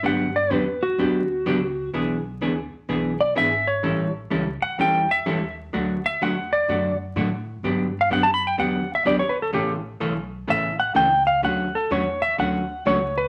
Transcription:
X:1
M:4/4
L:1/16
Q:"Swing" 1/4=126
K:D
V:1 name="Electric slide guitar"
f2 d2 B2 F8- F2 | z8 z2 d2 e2 c2- | c2 z4 f2 g2 e4 z2 | z2 e2 f2 d4 z6 |
z3 =f ^f a b g f3 e d c B A | G2 z6 e2 f2 g2 =f2 | f2 A2 c2 e2 f4 c2 B2 |]
V:2 name="Hollow-body jazz guitar"
[D,F,B,DG]2 z2 [D,F,B,DG]2 z2 [D,F,B,DG]2 z2 [D,F,B,DG]2 z2 | [E,B,D^G]2 z2 [E,B,DG]2 z2 [E,B,DG]2 z2 [E,B,DG]2 z2 | [E,G,CEA]2 z2 [E,G,CEA]2 z2 [E,G,CEA]2 z2 [E,G,CEA]2 z2 | [D,F,A,DF]2 z2 [D,F,A,DF]2 z2 [D,F,A,DF]2 z2 [D,F,A,DF]2 z2 |
[D,F,B,DG]2 z2 [D,F,B,DG]2 z2 [D,F,B,DG]2 z2 [D,F,B,DG]2 z2 | [C,E,A,CA]2 z2 [C,E,A,CA]2 z2 [C,E,A,CA]2 z2 [C,E,A,CA]2 z2 | [D,F,A,CF]2 z2 [D,F,A,CF]2 z2 [D,F,A,CF]2 z2 [D,F,A,CF]2 z2 |]
V:3 name="Upright bass" clef=bass
G,,4 E,,4 D,,4 C,,4 | B,,,4 D,,2 z2 B,,,4 ^G,,,4 | A,,,4 C,,2 z2 E,,4 _E,,4 | D,,4 E,,4 F,,4 A,,4 |
G,,4 F,,4 E,,4 D,,4 | A,,,4 B,,,4 A,,,4 C,,4 | D,,4 E,,4 D,,4 C,,4 |]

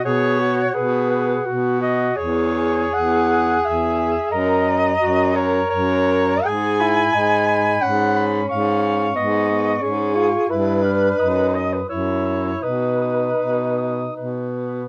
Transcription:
X:1
M:3/4
L:1/16
Q:1/4=86
K:B
V:1 name="Clarinet"
f2 f4 f4 f2 | z2 g4 g4 g2 | a2 a4 a4 a2 | z2 b4 b4 b2 |
c'2 c'4 c'4 c'2 | z2 =f'2 d'2 d'2 e'2 e'2 | d'2 d'4 d'2 B4 |]
V:2 name="Alto saxophone"
c4 B4 z2 d2 | c4 f4 e4 | d6 c2 c4 | g8 f3 z |
^e4 d4 G4 | B6 d B c4 | B8 z4 |]
V:3 name="Tenor saxophone"
G2 F2 G4 F2 F2 | G12 | A2 z2 F2 A6 | G2 E2 D4 C4- |
C4 B,2 B,2 C2 ^E2 | E2 =D2 ^D2 z2 E4 | D8- D2 z2 |]
V:4 name="Baritone saxophone" clef=bass
B,,4 B,,4 B,,4 | E,,4 E,,4 E,,4 | F,,4 F,,4 F,,4 | G,,4 G,,4 G,,4 |
G,,4 G,,4 G,,4 | =G,,4 F,,4 F,,4 | B,,4 B,,4 B,,4 |]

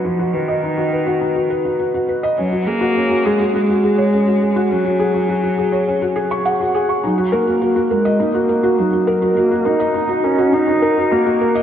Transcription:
X:1
M:4/4
L:1/16
Q:1/4=103
K:Ebm
V:1 name="Felt piano"
^F F =B ^d ^D F B F D F B F F F B d | D G A G D G A G G G A d D G A G | D G A G G G A d D G A d' g G A d' | E G B G G G B e E G B G E G B G |
G G B e E G B G E G B G G G B e |]
V:2 name="Cello" clef=bass
F,2 ^D,8 z6 | G,2 B,4 A,2 A,8 | G,12 z4 | G,2 B,4 A,2 B,4 G,4 |
B,2 E4 D2 E4 B,4 |]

